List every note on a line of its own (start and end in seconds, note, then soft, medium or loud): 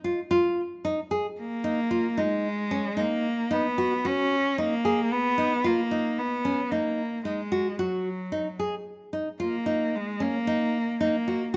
0.04 0.19 F4 medium
0.31 0.60 F4 medium
0.85 0.99 D#4 medium
1.11 1.26 G#4 medium
1.40 2.21 A#3 medium
1.64 1.79 D#4 medium
1.91 2.06 F4 medium
2.17 3.01 G#3 medium
2.17 2.47 D#4 medium
2.71 2.86 C#4 medium
2.97 3.54 A#3 medium
2.97 3.26 D#4 medium
3.51 4.07 B3 medium
3.51 3.66 D#4 medium
3.78 3.93 F#4 medium
4.05 4.60 C#4 medium
4.05 4.34 F#4 medium
4.58 5.13 A#3 medium
4.58 4.73 D#4 medium
4.85 5.00 G#4 medium
5.12 5.68 B3 medium
5.38 5.53 D#4 medium
5.64 6.20 A#3 medium
5.64 5.79 F4 medium
5.91 6.21 D#4 medium
6.19 6.73 B3 medium
6.45 6.60 C#4 medium
6.71 7.25 A#3 medium
6.71 7.01 D#4 medium
7.25 7.81 G#3 medium
7.25 7.40 D#4 medium
7.52 7.67 F#4 medium
7.79 8.60 F#3 medium
7.79 8.08 F#4 medium
8.32 8.47 D#4 medium
8.59 8.74 G#4 medium
9.13 9.28 D#4 medium
9.40 9.97 A#3 medium
9.40 9.54 F4 medium
9.66 9.95 D#4 medium
9.95 10.23 G#3 medium
10.20 11.01 A#3 medium
10.20 10.35 C#4 medium
10.47 10.76 D#4 medium
11.01 11.52 A#3 medium
11.01 11.15 D#4 medium
11.28 11.42 F#4 medium